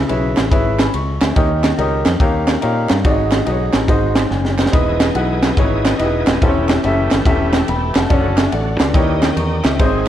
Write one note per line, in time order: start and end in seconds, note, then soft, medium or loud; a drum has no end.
0.00 0.32 C#3 medium
0.08 0.33 B1 medium
0.08 0.42 E4 medium
0.08 0.42 G#4 medium
0.08 0.43 B4 medium
0.08 0.43 C#5 medium
0.08 0.43 E5 medium
0.08 ride medium
0.37 0.50 A1 medium
0.37 snare loud
0.37 clap medium
0.37 ride medium
0.51 0.87 G#1 loud
0.51 0.85 E4 medium
0.51 0.85 G#4 medium
0.51 0.85 B4 medium
0.51 0.85 C#5 medium
0.51 0.79 E5 medium
0.51 kick loud
0.51 ride medium
0.79 0.93 G#5 medium
0.79 0.93 B5 medium
0.79 snare loud
0.79 clap medium
0.79 ride medium
0.94 1.17 C#2 medium
0.94 1.20 C#6 medium
0.94 ride medium
1.21 1.34 D2 loud
1.21 1.62 E5 medium
1.21 1.62 G#5 medium
1.21 snare loud
1.21 clap medium
1.21 ride medium
1.35 1.72 D#2 loud
1.35 2.02 D#3 medium
1.35 1.69 D#4 medium
1.35 1.69 G4 medium
1.35 1.70 A#4 medium
1.35 1.70 C#5 medium
1.35 1.70 D#5 loud
1.35 kick loud
1.35 ride medium
1.64 snare loud
1.64 clap loud
1.64 ride medium
1.78 2.02 C#2 medium
1.78 2.11 D#4 medium
1.78 2.12 G4 medium
1.78 2.12 A#4 medium
1.78 2.12 C#5 medium
1.78 2.12 D#5 loud
1.78 ride medium
2.05 2.18 F2 loud
2.05 snare loud
2.05 clap loud
2.05 ride medium
2.20 2.56 D#2 loud
2.20 2.54 D#4 medium
2.20 2.54 G4 medium
2.20 2.54 A#4 medium
2.20 2.54 C#5 medium
2.20 2.54 F5 medium
2.20 kick loud
2.20 ride medium
2.47 snare loud
2.47 clap loud
2.47 ride medium
2.61 2.86 A#2 medium
2.61 2.95 D#4 medium
2.61 2.96 G4 medium
2.61 2.96 A#4 medium
2.61 2.96 C#5 medium
2.61 2.96 F5 loud
2.61 ride medium
2.89 3.03 G2 medium
2.89 snare loud
2.89 clap medium
2.89 ride medium
3.04 3.41 G#1 loud
3.04 3.70 G#2 medium
3.04 3.38 D#4 medium
3.04 3.38 F#4 medium
3.04 3.38 G#4 medium
3.04 3.39 C#5 medium
3.04 3.12 D5 medium
3.04 kick loud
3.04 ride medium
3.11 3.41 D#5 loud
3.32 snare loud
3.32 clap loud
3.32 ride medium
3.45 3.70 B1 medium
3.45 3.80 D#4 medium
3.45 3.80 F#4 medium
3.45 3.80 G#4 medium
3.45 3.54 B4 medium
3.45 3.81 D#5 loud
3.45 ride medium
3.52 3.83 C#5 medium
3.74 3.87 A1 medium
3.74 snare loud
3.74 clap medium
3.74 ride medium
3.88 4.25 G#1 loud
3.88 4.55 G#2 medium
3.88 4.22 D#4 medium
3.88 4.22 F#4 medium
3.88 4.22 G#4 medium
3.88 4.23 C5 medium
3.88 4.23 D#5 loud
3.88 kick loud
3.88 ride medium
4.15 snare loud
4.15 clap loud
4.15 ride medium
4.31 4.67 F#1 medium
4.31 4.57 G#5 medium
4.31 snare medium
4.45 snare medium
4.58 4.99 C5 medium
4.58 4.72 D#5 medium
4.58 snare loud
4.58 clap loud
4.66 snare loud
4.71 5.09 E1 loud
4.71 8.06 E3 medium
4.71 5.39 E3 medium
4.71 6.39 B3 medium
4.71 5.06 D#4 medium
4.71 5.06 E4 medium
4.71 6.39 G#4 medium
4.71 5.06 G#4 medium
4.71 5.07 B4 medium
4.71 6.40 D#5 medium
4.71 5.07 D#5 medium
4.71 kick loud
4.71 ride medium
5.00 snare loud
5.00 clap loud
5.00 ride medium
5.14 5.51 B1 medium
5.14 5.48 D#4 medium
5.14 5.49 E4 medium
5.14 5.49 G#4 medium
5.14 5.49 B4 medium
5.14 5.49 F#5 medium
5.14 ride medium
5.43 snare loud
5.43 clap loud
5.43 ride medium
5.57 5.93 G#1 loud
5.57 5.91 D#4 medium
5.57 5.91 E4 medium
5.57 5.91 G#4 medium
5.57 5.92 B4 medium
5.57 5.92 C#5 loud
5.57 kick loud
5.57 ride medium
5.85 snare loud
5.85 clap loud
5.85 ride medium
5.98 6.23 E1 medium
5.98 6.33 D#4 medium
5.98 6.33 E4 medium
5.98 6.06 G4 medium
5.98 6.33 B4 medium
5.98 6.34 D#5 loud
5.98 ride medium
6.05 6.36 G#4 medium
6.27 6.40 D#1 loud
6.27 snare loud
6.27 clap loud
6.27 ride medium
6.41 6.78 E1 loud
6.41 7.08 E3 medium
6.41 8.92 A3 medium
6.41 6.75 C#4 medium
6.41 6.75 E4 medium
6.41 8.09 G4 medium
6.41 6.76 G4 medium
6.41 6.76 A4 medium
6.41 6.49 C5 medium
6.41 kick loud
6.41 ride medium
6.48 6.78 C#5 loud
6.69 snare loud
6.69 clap loud
6.69 ride medium
6.83 7.08 F#1 medium
6.83 7.17 C#4 medium
6.83 7.18 E4 medium
6.83 7.18 G4 medium
6.83 7.18 A4 medium
6.83 7.18 E5 loud
6.83 ride medium
7.11 7.25 G1 medium
7.11 snare loud
7.11 clap medium
7.11 ride medium
7.26 7.62 E1 loud
7.26 7.60 C#4 medium
7.26 7.60 E4 medium
7.26 7.60 G4 medium
7.26 7.60 A4 medium
7.26 7.54 E5 loud
7.26 kick loud
7.26 ride medium
7.53 7.68 E5 medium
7.53 7.68 G5 medium
7.53 snare loud
7.53 clap loud
7.53 ride medium
7.68 7.92 E1 loud
7.68 7.95 G5 medium
7.68 7.95 B5 medium
7.68 ride medium
7.95 8.08 F1 medium
7.95 8.37 F#5 medium
7.95 8.36 A5 medium
7.95 snare loud
7.95 clap loud
7.95 ride medium
8.10 8.46 F#1 loud
8.10 8.94 D3 medium
8.10 8.44 C#4 medium
8.10 8.44 D4 medium
8.10 8.94 F#4 medium
8.10 8.44 F#4 medium
8.10 8.44 A4 medium
8.10 8.38 C#5 loud
8.10 kick loud
8.10 ride medium
8.38 8.52 E5 medium
8.38 8.52 G#5 medium
8.38 snare loud
8.38 clap loud
8.38 ride medium
8.52 8.76 A1 medium
8.52 8.79 D5 medium
8.52 8.79 F#5 medium
8.52 ride medium
8.80 8.93 C#2 medium
8.80 9.21 B4 medium
8.80 9.20 D5 medium
8.80 snare loud
8.80 clap loud
8.80 ride medium
8.94 9.30 D#2 loud
8.94 9.60 D#3 medium
8.94 9.78 D#3 medium
8.94 9.28 D#4 medium
8.94 9.28 E4 medium
8.94 9.28 G4 medium
8.94 9.78 G4 medium
8.94 9.29 A#4 medium
8.94 9.29 C#5 loud
8.94 9.78 D#5 medium
8.94 kick loud
8.94 ride medium
9.22 snare loud
9.22 clap loud
9.22 ride medium
9.37 9.60 E2 medium
9.37 9.64 A#5 medium
9.37 9.63 C#6 medium
9.37 ride medium
9.64 9.77 C#2 medium
9.64 9.79 C#5 medium
9.64 10.05 E5 medium
9.64 snare loud
9.64 clap loud
9.64 ride medium
9.79 10.08 G#1 loud
9.79 10.08 G#2 medium
9.79 10.08 D#3 medium
9.79 10.08 G#3 medium
9.79 10.08 C4 medium
9.79 10.08 D#4 medium
9.79 10.08 G#4 medium
9.79 10.08 C5 medium
9.79 9.87 C#5 medium
9.79 kick loud
9.79 ride medium
9.85 10.08 D#5 loud